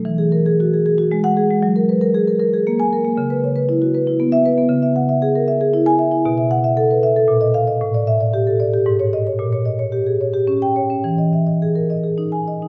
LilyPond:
\new Staff \with { instrumentName = "Marimba" } { \time 3/4 \key e \lydian \tempo 4 = 114 << { r2 r16 fis''8 r16 | r2 r16 gis''8 r16 | r2 r16 e''8 r16 | r2 r16 gis''8 r16 |
r8 fis''16 r4. r16 eis''16 r16 | r8 e''16 r4. r16 dis''16 r16 | r2 r16 g''8 r16 | r2 r16 gis''8 r16 | } \\ { e16 gis'16 ais'16 gis'16 fis'16 gis'16 gis'16 fis'16 gis8 gis'16 gis16 | fis16 ais'16 b'16 ais'16 gis'16 ais'16 ais'16 gis'16 ais8 ais'16 ais16 | cis16 b'16 cis''16 b'16 e'16 fis'16 b'16 e'16 b8 b'16 b16 | cis16 e''16 fis''16 e''16 gis'16 ais'16 e''16 gis'16 e'8 e''16 e'16 |
b,16 e''8 e''16 a'16 b'16 e''16 a'16 ais,16 dis''8 dis''16 | a,16 d''8 d''16 g'16 a'16 d''16 g'16 gis,16 cis''8 cis''16 | ais,16 cis''16 dis''16 cis''16 g'16 gis'16 cis''16 g'16 cis'8 cis''16 cis'16 | e16 dis''16 e''16 dis''16 gis'16 ais'16 dis''16 gis'16 dis'8 dis''16 dis'16 | } >> }